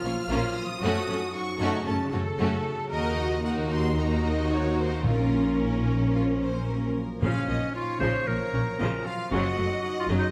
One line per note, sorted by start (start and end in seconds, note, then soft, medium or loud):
0.00 0.12 A#1 soft
0.00 0.84 A#2 medium
0.00 0.63 F3 soft
0.00 0.28 C#4 soft
0.00 0.46 F4 soft
0.00 0.80 F4 medium
0.00 0.55 F6 medium
0.04 0.13 A#3 soft
0.04 0.13 C#4 soft
0.04 0.12 F4 soft
0.04 0.12 C#5 soft
0.13 0.42 F#3 soft
0.29 0.38 A#1 medium
0.29 0.54 A#3 medium
0.29 0.55 A#3 medium
0.29 0.99 C#4 soft
0.29 0.55 C#4 medium
0.29 0.55 F4 medium
0.47 0.84 F4 soft
0.58 1.35 D#6 medium
0.65 0.84 F3 soft
0.82 2.94 F#2 medium
0.82 0.90 F#2 medium
0.82 1.06 A3 medium
0.82 1.07 A3 medium
0.82 1.07 C#4 medium
0.82 1.33 F#4 medium
0.82 1.07 F#4 medium
1.00 1.33 C#4 soft
1.08 1.16 F#2 soft
1.08 1.17 A3 soft
1.08 1.17 C#4 soft
1.08 1.18 C#4 soft
1.08 1.18 A4 soft
1.17 1.46 D#4 soft
1.34 1.85 C#4 soft
1.34 1.60 F#4 soft
1.34 1.85 C#6 medium
1.51 2.55 F#4 soft
1.59 1.67 F#2 medium
1.59 1.85 A3 medium
1.59 1.85 C#4 medium
1.59 1.86 D#4 medium
1.59 1.85 F#4 medium
1.69 2.02 C#3 soft
1.86 1.95 F#2 soft
1.86 1.95 A3 soft
1.86 2.37 C#4 soft
1.86 2.12 C#4 soft
1.86 1.94 C#4 soft
1.86 1.95 C#4 soft
1.86 1.95 A4 soft
1.86 2.12 A5 medium
2.03 2.72 C#3 soft
2.12 2.20 F#2 soft
2.12 2.22 A3 soft
2.12 2.22 C#4 soft
2.12 2.20 F#4 soft
2.12 2.92 A4 medium
2.12 2.21 C#5 soft
2.21 2.51 D#3 soft
2.39 2.47 F#2 medium
2.39 2.64 A3 medium
2.39 2.64 A3 soft
2.39 2.94 C#4 soft
2.39 2.64 C#4 medium
2.39 2.64 F#4 medium
2.56 3.61 F#4 soft
2.73 2.94 C#3 soft
2.91 5.01 D#2 medium
2.91 5.07 D#3 soft
2.91 3.41 A#3 soft
2.91 3.41 D#4 soft
2.91 3.40 F#4 medium
2.91 3.40 A#4 medium
2.91 3.17 A#4 medium
2.91 3.41 D#5 medium
3.09 3.43 D#4 soft
3.18 3.44 F#4 soft
3.27 3.57 F4 soft
3.44 3.95 A#3 soft
3.44 3.95 D#4 soft
3.44 4.49 D#4 medium
3.44 3.97 F#4 soft
3.44 3.97 A#4 medium
3.44 3.53 F#5 medium
3.62 4.66 F#4 soft
3.73 3.98 C6 medium
3.79 4.13 A#3 soft
3.96 5.02 A#3 soft
3.96 4.48 D#4 soft
3.96 5.02 D#4 soft
3.96 5.04 F#4 medium
3.96 5.04 A#4 soft
3.96 4.25 A#5 medium
4.14 4.84 A#3 soft
4.25 4.51 D#5 medium
4.31 4.62 C4 soft
4.49 5.06 D#4 soft
4.49 5.05 F#4 soft
4.49 4.77 C#5 medium
4.67 5.06 F#4 soft
4.78 5.05 C5 medium
4.86 8.76 A#3 soft
5.03 7.01 A#1 medium
5.03 7.21 A#2 soft
5.03 5.82 A#2 soft
5.03 6.97 A#3 soft
5.03 7.01 C#4 soft
5.03 6.91 C#4 medium
5.03 5.54 F4 soft
5.03 5.53 A#4 soft
5.03 6.92 A#4 medium
5.22 5.58 C#4 soft
5.40 5.72 D#4 soft
5.59 6.13 C#4 soft
5.59 6.10 C#4 soft
5.77 6.85 F4 soft
5.95 6.31 F3 soft
6.14 6.67 C#4 soft
6.14 6.22 F4 medium
6.32 7.04 F3 soft
6.42 6.68 C5 medium
6.51 6.81 F#3 soft
6.68 7.39 C#4 soft
6.68 7.22 A#4 soft
6.87 7.91 F4 soft
7.05 8.08 F3 soft
7.21 7.30 A#1 medium
7.21 7.30 A#2 soft
7.21 9.34 A#2 soft
7.21 7.96 A#2 soft
7.21 7.46 C#3 soft
7.21 7.46 F3 soft
7.21 7.70 C#4 medium
7.21 7.72 C#5 soft
7.21 7.46 F5 medium
7.40 7.74 C#4 soft
7.48 7.57 A#1 soft
7.48 7.56 A#2 soft
7.48 7.56 F3 soft
7.48 7.56 A#3 soft
7.48 7.74 D#5 soft
7.57 7.86 D#4 soft
7.75 8.26 C#4 soft
7.75 7.99 F4 medium
7.75 8.77 C#5 medium
7.75 8.01 F5 soft
7.92 8.97 F4 soft
8.00 8.10 A#1 medium
8.00 8.08 A#2 soft
8.00 8.25 C#3 soft
8.00 8.25 F3 medium
8.00 8.28 C5 medium
8.00 8.11 C6 medium
8.10 8.44 F3 soft
8.27 8.36 A#1 soft
8.27 8.35 A#2 soft
8.27 8.36 F3 soft
8.27 8.36 A#3 soft
8.27 8.79 C#4 soft
8.27 9.07 A#4 medium
8.27 9.05 A#5 soft
8.45 9.14 F3 soft
8.53 8.62 A#1 soft
8.53 8.62 A#2 soft
8.53 8.61 A#3 soft
8.53 8.62 C#4 soft
8.63 8.92 F#3 soft
8.79 8.88 A#1 soft
8.79 8.88 A#2 soft
8.79 9.04 C#3 medium
8.79 9.04 F3 medium
8.79 9.49 C#4 soft
8.79 8.87 D#5 soft
8.98 9.34 F4 soft
9.06 9.30 F4 medium
9.06 9.32 F5 medium
9.06 9.32 F5 soft
9.16 9.34 F3 soft
9.31 9.40 F#1 medium
9.31 9.40 F#2 medium
9.31 10.31 F#2 soft
9.31 9.56 C#3 medium
9.31 9.56 F#3 medium
9.31 9.81 F#4 medium
9.31 10.31 D#5 medium
9.31 9.82 F#5 medium
9.50 9.83 C#4 soft
9.58 9.67 F#1 soft
9.58 9.67 F#2 soft
9.58 9.66 F#3 soft
9.58 9.66 A3 soft
9.68 9.96 D#4 soft
9.82 10.31 C#4 soft
9.82 9.99 F#4 medium
9.82 10.00 F#5 medium
10.00 10.08 F4 medium
10.00 10.31 F#4 soft
10.00 10.18 F5 soft
10.08 10.16 F#1 medium
10.08 10.17 F#2 medium
10.08 10.31 C#3 medium
10.08 10.31 F#3 medium
10.18 10.31 C#3 soft
10.18 10.26 D#4 medium
10.18 10.31 D#5 soft